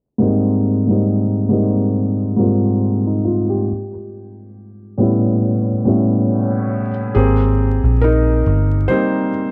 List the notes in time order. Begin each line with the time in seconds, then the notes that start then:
0.18 G#2 G3 A#3 C4 D#4
0.87 G#2 G3 A#3 C4 D#4
1.49 G#2 G3 A#3 C4 D#4
2.37 G#2 G3 A#3 C4 F4
3.07 D#4
3.25 F4
3.49 G4
4.98 A2 G3 B3 C#4 E4
5.85 A2 G3 B3 C#4 E4
7.15 G#1 A#3 C4 G4 G#4
7.84 A#1
8.01 D#4 A#4
8.46 G1
8.88 G3 A#3 C4 D#4 C5